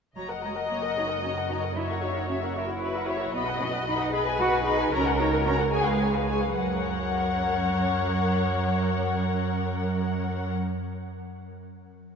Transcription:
0.16 F#1 F#3 F#4 C#5 D#5 A#5
0.29 A#4 F#5
0.43 G#3 F#4 C#5 A#5
0.56 A#4 F#5
0.69 A#3 F#4 C#5 A#5
0.83 A#4 F#5
0.96 D#4 F#4 C#5 A#5
1.09 A#4 F#5
1.22 C#4 F#4 C#5 A#5
1.36 A#4 F#5
1.49 D#4 F#4 C#5 A#5
1.62 A#4 F#5
1.75 E4 F#4 C#5 E5
1.89 A#4 E5 F#5
2.02 D#4 F#4 C#5 E5
2.15 A#4 E5 F#5
2.29 C#4 F#4 C#5 E5
2.42 A#4 E5 F#5
2.55 E4 F#4 A#4 C#5 E5
2.68 A#4 E5 F#5
2.81 F#4 B4 C#5 E5
2.94 A#4 E5 F#5
3.07 F#4 C#5 E5
3.20 A#4 E5 F#5
3.33 B1 B3 F#4 D#5 B5
3.47 B4 F#5
3.59 C#4 F#4 D#5 B5
3.73 B4 F#5
3.86 D#4 F#4 D#5 B5
3.99 B4 F#5
4.12 G#4 B4 D#5 B5
4.26 B4 G#5
4.39 F#4 G#4 D#5 B5
4.52 B4 G#5
4.65 D#4 G#4 D#5 B5
4.78 B4 G#5
4.91 C#2 C#4 F#4 A#4 C#5 A#5
5.05 A#4 F#5
5.18 D#4 F#4 C#5 A#5
5.32 A#4 F#5
5.45 C#4 F#4 C#5 A#5
5.59 A#4 F#5
5.72 G#3 G#4 C#5 G#5
5.85 B4 F5
5.99 G#4 C#5 G#5
6.14 B4 F5
6.28 G#4 C#5 G#5
6.41 B4 F5
6.54 F#2 F#3 A#4 C#5 F#5

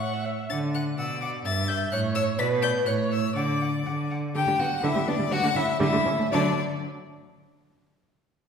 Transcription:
Already playing: A2 C#6
0.01 C#5 F#5
0.13 E5
0.25 C#5 E5
0.39 E5
0.50 D3 F#5 A6
0.74 F#5 F#6
0.96 B2 D5 F#5 E6
1.21 F#5 D6
1.45 G2 E5 A6
1.68 E5 G6
1.92 A2 C#5 F#6
2.15 C#5 E6
2.39 B2 B4 D5 B6
2.62 D5 G6
2.86 A2 C#5 F#6
3.11 C#5 E6
3.35 D3 D5 F#5 D6
3.61 F#5
3.86 D3 F#5
4.10 F#5
4.35 D3 G4 G5
4.47 D3 G3
4.59 D3 B3 F#4 F#5
4.83 D3 E4 E5
4.95 D3 G3
5.07 D3 B3 D4 D5
5.19 D3 G3
5.30 D3 G3 F#4 F#5
5.43 D3 A3
5.55 D3 C#4 E4 E5
5.80 D3 G3 E4 E5
5.93 D3 A3
6.05 D3 C#4
6.19 D3 A3
6.31 D3 F#3 D4 D5

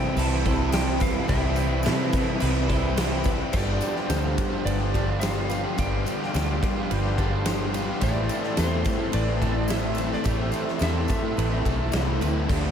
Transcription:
Already playing: C3 E3 G3 C4 E4 A4 C5 G5 B5
0.16 C2 C3 E3 G3 C4 E4 B4 A5, tambourine, crash
0.45 G3 C4 E4 A4, kick, tambourine, crash
0.72 E3 G3 C4 C5 G5, snare, tambourine, crash
0.76 E4
1.00 B4 F5, kick, tambourine, crash
1.28 C2 C3 E3 G4 B4 E5, kick, tambourine, crash
1.32 G3 C4 E4
1.56 tambourine, crash
1.83 C3 E3 A4, snare, tambourine, crash
1.87 G3 C4 E4
2.13 kick, tambourine, crash
2.40 C2 C3 E3 G3 C4 E4 B4, tambourine, crash
2.69 G3 C4 E4 A4, kick, tambourine, crash
2.96 E3 G3 C4 E4 C5, snare, tambourine, crash
3.24 B4, kick, tambourine, crash
3.53 G1 G2 D3 F3 G3 B3 G4 D5 F5 C6, kick, crash, tambourine
3.57 F4
3.81 D3 F3 G3 B3 G4, ride, tambourine
3.85 F4
3.95 F3 G3 B3 G4, snare
4.09 D2 G2 D3 F3 G3 B3 F4 G4 A4 C5, snare, ride, tambourine
4.24 F3 B3 F4
4.37 F3 G3 B3 G4, muted overdriven electric guitar stroke, kick, ride, tambourine
4.50 F3 B3 F4, muted overdriven electric guitar stroke
4.65 G1 G2 D3 B4 D5, ride, tambourine
4.69 G3
4.80 F3 G3 B3 G4
4.92 D3 F3 B3 F4 A4, kick, ride
5.07 F3 B3 F4, muted overdriven electric guitar stroke
5.20 G2 D3 F3 G3 B3 F4 C5 F5, snare, ride, tambourine
5.24 G4
5.35 F3 B3 F4
5.49 D3 F3 G3 B3 G4 B4, ride, tambourine
5.53 F4
5.63 F3 G3 B3 F4 G4
5.77 G1 G2 D3 F3 G3 B3 F4 G4 G5, kick, ride, tambourine
6.04 D3 F3 G3 B3 G4, ride, tambourine
6.08 F4
6.19 F3 G3 B3 G4, snare
6.33 D2 G2 D3 F3 G3 B3 F4 G4 A4, snare, ride, tambourine
6.48 F3 B3 F4
6.61 F3 G3 B3 G4, muted overdriven electric guitar stroke, kick, ride
6.75 F3 B3 F4, muted overdriven electric guitar stroke
6.89 G1 G2 D3 G3 B4, ride, tambourine
7.03 F3 G3 B3 G4
7.17 D3 F3 B3 F4 A4, kick, ride
7.30 F3 B3 F4, muted overdriven electric guitar stroke
7.45 G2 D3 F3 G3 B3 F4 G4 C5, snare, ride, tambourine
7.58 F3 B3 F4
7.73 D3 F3 G3 B3 F4 G4 B4, ride, tambourine
7.87 F3 G3 B3 F4 G4
8.00 A1 A2 E3 A3 C4 E4 G4 A4 D5 E5, kick, ride, tambourine
8.29 E3 A3 C4 E4, ride, tambourine
8.43 A3 C4 E4, snare
8.57 E2 A2 E3 A3 C4 E4 A4 C5, snare, ride, tambourine
8.71 A3 C4 E4
8.84 E3 A3 C4 E4, muted overdriven electric guitar stroke, kick, ride, tambourine
8.99 A3 C4 E4, muted overdriven electric guitar stroke
9.11 A1 A2 E3 A3 B4 D5, ride, tambourine
9.27 A3 C4 E4
9.40 E3 A3 C4 E4 A4, kick, ride
9.54 A3 C4 E4, muted overdriven electric guitar stroke
9.68 A2 E3 A3 C5 E5, snare, ride, tambourine
9.72 C4 E4
9.82 A3 C4 E4
9.95 E3 A3 B4, ride, tambourine
10.00 C4 E4
10.12 A3 C4 E4 D5, snare
10.24 A1 A2 E3 A3 C4 E4 G4, kick, ride, tambourine
10.29 C5
10.52 E3 A3 C4, ride, tambourine
10.56 E4
10.66 A3 C4 E4, snare
10.79 E2 A2 E3 A3 C4 E4 A4 E5, snare, ride, tambourine
10.95 A3 C4 E4
11.08 E3 A3 C4 E4, muted overdriven electric guitar stroke, kick, ride, tambourine
11.23 A3 C4 E4, muted overdriven electric guitar stroke
11.36 A1 A2 E3 A3 B4, ride, tambourine
11.50 A3 C4 E4
11.64 B1 E3 A3 C4 E4 A4, kick, ride
11.78 C4 E4, muted overdriven electric guitar stroke
11.82 A3
11.91 C2 A2 E3 A3 C4 E4 C5, snare, ride, tambourine
12.06 A3 C4 E4
12.20 D2 E3 A3 C4 E4 B4, ride, tambourine
12.34 A3 C4 E4
12.48 D2 D3 F3 A3 D4 F4 G4 C5 F5 D6, kick, tambourine, crash

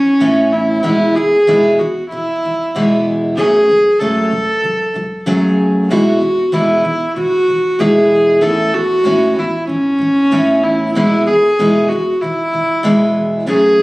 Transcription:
Already playing: A2 E3 C#4
0.20 A2 E3 B3 C#4 E4
0.52 E4
0.82 E2 B2 E3 G#3 B3 E4
1.15 E2 B2 E3 G#4
1.47 E2 B2 E3 G#3 B3 E4
1.79 E2 B2 E3 F#4
2.10 E2 B2 E3 E4
2.43 E2 B2 E3
2.75 E2 B2 E3 G#3 B3 E4
3.36 F#2 C#3 F#3 A3 C#4 G#4
3.69 F#2 C#3 F#3
4.00 F#2 C#3 F#3 A3 C#4 A4
4.31 F#2 C#3 F#3
4.63 F#2 C#3 F#3
4.94 F#2 C#3 F#3
5.26 F#2 C#3 F#3 A3 C#4 G#4
5.90 E2 B2 E3 G#3 B3 E4 F#4
6.21 E2 B2 E3
6.52 E2 B2 E3 G#3 B3 E4
6.84 E2 B2 E3
7.16 E2 B2 E3 F#4
7.48 E2 B2 E3
7.79 E2 B2 E3 G#3 B3 E4 G#4
8.41 A2 E3 B3 C#4 E4 A4
8.72 A2 E3 F#4
9.04 A2 E3 B3 C#4 E4
9.36 A2 E3 E4
9.67 A2 E3 C#4
9.99 A2 E3
10.31 A2 E3 B3 C#4 E4
10.63 E4
10.95 E2 B2 E3 G#3 B3 E4
11.26 E2 B2 E3 G#4
11.59 E2 B2 E3 G#3 B3 E4
11.89 E2 B2 E3 F#4
12.21 E2 B2 E3 E4
12.53 E2 B2 E3
12.83 E2 B2 E3 G#3 B3 E4
13.46 F#2 C#3 F#3 A3 C#4 G#4
13.79 F#2

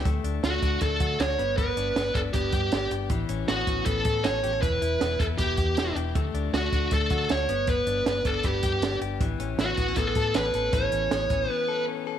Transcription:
0.05 D2 A3, kick, closed hi-hat
0.24 D2 D4, closed hi-hat
0.43 D2 A3 F#4, snare, closed hi-hat
0.62 D2 D4, kick, closed hi-hat
0.81 D2 A3 A4, kick, closed hi-hat
1.00 D3 F#4, kick, closed hi-hat
1.19 D2 D4 C#5, snare, closed hi-hat
1.38 G1 B3, closed hi-hat
1.57 B3 B4, kick, closed hi-hat
1.76 G1 D4, closed hi-hat
1.95 G1 B3, snare, closed hi-hat
2.14 G1 D4 A4, kick, closed hi-hat
2.33 G1 B3 G4, kick, closed hi-hat
2.52 G2 G4, kick, closed hi-hat
2.72 G1 D4, snare, closed hi-hat
2.91 G1 G4, closed hi-hat
3.10 A1 E3, kick, closed hi-hat
3.29 A1 C#4, closed hi-hat
3.48 A1 B3 F#4, snare, closed hi-hat
3.67 A1 C#4, kick, closed hi-hat
3.86 A1 B3 A4, kick, closed hi-hat
4.05 A2 A4, kick, closed hi-hat
4.24 A1 C#4 C#5, snare, closed hi-hat
4.43 A1 G4, closed hi-hat
4.53 A4
4.62 E1 E3 B4, kick, closed hi-hat
4.81 E1 E4, closed hi-hat
5.00 E1 B3, snare, closed hi-hat
5.19 E1 E4 A4, kick, closed hi-hat
5.38 E1 B3 G4, kick, closed hi-hat
5.57 E2 G4, kick, closed hi-hat
5.77 E1 E4, snare, closed hi-hat
5.95 E1 G4, closed hi-hat
6.15 D2 A3, kick, closed hi-hat
6.34 D2 D4, closed hi-hat
6.53 D2 A3 F#4, snare, closed hi-hat
6.72 D2 D4, kick, closed hi-hat
6.91 D2 A3 A4, kick, closed hi-hat
7.10 D3 F#4, kick, closed hi-hat
7.29 D2 D4 C#5, snare, closed hi-hat
7.49 G1 B3, closed hi-hat
7.67 B3 B4, kick, closed hi-hat
7.86 G1 D4, closed hi-hat
8.06 G1 B3, snare, closed hi-hat
8.25 G1 D4 A4, kick, closed hi-hat
8.43 G1 B3 G4, kick, closed hi-hat
8.63 G2 G4, kick, closed hi-hat
8.82 G1 D4, snare, closed hi-hat
9.01 G1 G4, closed hi-hat
9.21 A1 E3, kick, closed hi-hat
9.39 A1 C#4, closed hi-hat
9.58 A1 B3 F#4, snare, closed hi-hat
9.77 A1 B3, kick, closed hi-hat
9.88 C#4
9.96 A1 B3 A4, kick, closed hi-hat
10.08 A4
10.15 A2 A4, kick, closed hi-hat
10.34 A1 C#4 B4, snare, closed hi-hat
10.54 A1 A4, closed hi-hat
10.73 A1 E3 C#5, kick, closed hi-hat
10.92 A1 C#4, closed hi-hat
11.11 A1 B3, snare, closed hi-hat
11.30 A1 C#4, kick, closed hi-hat
11.50 B3 B4
11.68 A4
11.88 C#4
12.07 A4

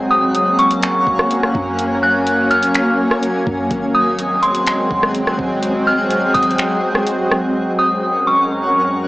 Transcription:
Already playing: F#1 F#3 A#3 C#4 A#4 F#5
0.11 D#6
0.35 closed hi-hat
0.59 C#6, closed hi-hat
0.71 closed hi-hat
0.82 finger snap, closed hi-hat
1.07 F#1, kick
1.19 cross-stick
1.31 closed hi-hat
1.43 cross-stick
1.55 F#2, kick
1.79 G#5, closed hi-hat
2.03 F#6
2.27 closed hi-hat
2.51 F6, closed hi-hat
2.63 closed hi-hat
2.75 finger snap, closed hi-hat
3.11 cross-stick
3.23 closed hi-hat
3.47 F#2, kick
3.71 G#1 F#3 G#3 C4 G#4 F#5, kick, closed hi-hat
3.95 D#6
4.19 closed hi-hat
4.43 C6, closed hi-hat
4.55 closed hi-hat
4.66 finger snap, closed hi-hat
4.91 G#1, kick
5.03 cross-stick
5.15 closed hi-hat
5.27 cross-stick
5.39 G#1, kick
5.63 closed hi-hat
5.87 F6
6.10 closed hi-hat
6.34 G#1 D#6, kick, closed hi-hat
6.43 closed hi-hat
6.51 closed hi-hat
6.58 finger snap, closed hi-hat
6.95 cross-stick
7.07 closed hi-hat
7.32 cross-stick
7.55 F#2 F#3 C#4 A#4 F#5
7.79 D#6
8.27 C#6

